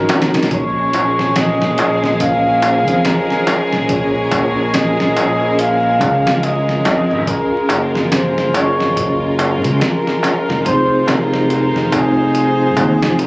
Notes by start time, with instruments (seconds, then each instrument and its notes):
Already playing: violin section G#3 C#4 D#4 F#4, vibraphone C#4 D#4 F#4 C#5, muted trumpet A#4
0.09 fingered electric bass D#2, vibraphone C#4 D#4 A#4, snare, closed hi-hat, darbuka tek
0.22 snare, closed hi-hat
0.34 fingered electric bass A#1, snare, closed hi-hat, darbuka tek
0.43 snare, closed hi-hat
0.51 violin section C#4 G#4 A#4, vibraphone C#4 F4 G#4 C#5, muted trumpet C#5, kick, closed hi-hat, darbuka tek
0.77 darbuka tek
0.93 fingered electric bass A#1, closed hi-hat, darbuka tek
1.19 snare, darbuka tek
1.36 muted trumpet D#5, snare, closed hi-hat, darbuka tek
1.61 fingered electric bass A#1, snare, darbuka tek
1.78 fingered electric bass A#1, vibraphone C#4 F4 G#4 D#5, closed hi-hat, darbuka tek
2.04 snare, darbuka tek
2.20 muted trumpet F5, kick, closed hi-hat, darbuka tek
2.46 darbuka tek
2.62 vibraphone C#4 F4 G#4 C5, closed hi-hat, darbuka tek
2.88 fingered electric bass F2, closed hi-hat, darbuka tek
3.05 muted trumpet A#4, snare, closed hi-hat, darbuka tek
3.30 snare, darbuka tek
3.47 snare, closed hi-hat, darbuka tek
3.73 fingered electric bass A#1, snare, darbuka tek
3.89 vibraphone C#4 F4 G#4 C#5, muted trumpet C#5, kick, closed hi-hat, darbuka tek
4.14 darbuka tek
4.31 fingered electric bass A#1, kick, closed hi-hat, darbuka tek
4.57 darbuka tek
4.74 muted trumpet D#5, snare, closed hi-hat, darbuka tek
5.00 fingered electric bass A#1, snare, darbuka tek
5.16 fingered electric bass A#1, vibraphone C#4 F4 G#4 D#5, closed hi-hat, darbuka tek
5.42 darbuka tek
5.59 muted trumpet F5, closed hi-hat, darbuka tek
5.84 darbuka tek
6.01 fingered electric bass C#2, kick, closed hi-hat, darbuka tek
6.26 snare, darbuka tek
6.43 muted trumpet D#5, closed hi-hat, darbuka tek
6.68 snare, darbuka tek
6.85 fingered electric bass F2, snare, closed hi-hat, darbuka tek
7.11 fingered electric bass G#1, darbuka tek
7.27 vibraphone C#4 F4 G#4 A#4, violin section F4, muted trumpet A#4, kick, closed hi-hat, darbuka tek
7.52 darbuka tek
7.69 fingered electric bass F#1, closed hi-hat, darbuka tek
7.95 snare, darbuka tek
8.12 muted trumpet C5, snare, closed hi-hat, darbuka tek
8.37 fingered electric bass F#1, snare, darbuka tek
8.54 fingered electric bass F#1, vibraphone C#4 F4 G#4 D#5, muted trumpet C#5, closed hi-hat, darbuka tek
8.79 snare, darbuka tek
8.97 kick, closed hi-hat, darbuka tek
9.22 darbuka tek
9.39 vibraphone C#4 F4 A#4, closed hi-hat, darbuka tek
9.63 fingered electric bass C#2, closed hi-hat, darbuka tek
9.80 muted trumpet A#4, snare, closed hi-hat, darbuka tek
10.07 snare, darbuka tek
10.23 snare, closed hi-hat, darbuka tek
10.49 fingered electric bass F1, snare, darbuka tek
10.65 vibraphone C4 D#4 F4 G#4, violin section D#4 C5, muted trumpet C5, kick, closed hi-hat, darbuka tek
10.90 darbuka tek
11.08 fingered electric bass F1, muted trumpet A#4, snare, closed hi-hat, darbuka tek
11.33 snare, darbuka tek
11.50 closed hi-hat, darbuka tek
11.75 fingered electric bass F1, snare, darbuka tek
11.92 vibraphone C4 D#4 F4 C5, muted trumpet G#4, kick, closed hi-hat, darbuka tek
12.17 darbuka tek
12.34 closed hi-hat, darbuka tek
12.60 darbuka tek
12.77 fingered electric bass D#2, kick, closed hi-hat, darbuka tek
13.02 fingered electric bass F1, snare, darbuka tek
13.19 muted trumpet A#4, closed hi-hat, darbuka tek